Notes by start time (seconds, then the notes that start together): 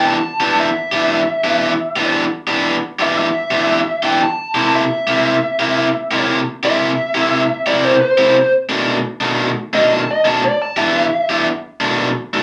Already playing: E3 B3 D4 G4
0.07 A5
0.40 E3 B3 D4 G4
0.60 E5
0.92 E3 B3 D4 G4
1.44 E3 B3 D4 G4
1.96 E3 B3 D4 G4
2.47 E3 B3 D4 G4
2.99 E3 B3 D4 G4 E5
3.18 E5
3.51 E3 B3 D4 G4
4.03 E3 B3 D4 G4 G5
4.23 A5
4.55 C3 A#3 E4 G4
4.75 E5
5.07 C3 A#3 E4 G4
5.59 C3 A#3 E4 G4
6.11 C3 A#3 E4 G4
6.63 C3 A#3 E4 G4 E5
7.15 C3 A#3 E4 G4
7.66 C3 A#3 E4 G4 D5
7.84 C5
8.02 C5
8.18 C3 A#3 E4 G4
8.69 B2 D#3 A3 D4
9.20 B2 D#3 A3 D4
9.73 B2 D#3 A3 D4 D#5
9.93 A5
10.11 D#5
10.25 B2 D#3 A3 D4 A5
10.44 D5
10.62 A5
10.77 E3 B3 D4 G4 E5
11.29 E3 B3 D4 G4
11.80 B2 D#3 A3 D4
12.33 B2 D#3 A3 D4